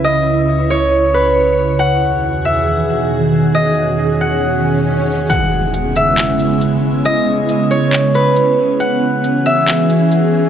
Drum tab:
HH |--------|--------|--------|x-xxxxx-|
CP |--------|--------|--------|----x---|

HH |x-xxxxx-|x-xxxxx-|
CP |----x---|----x---|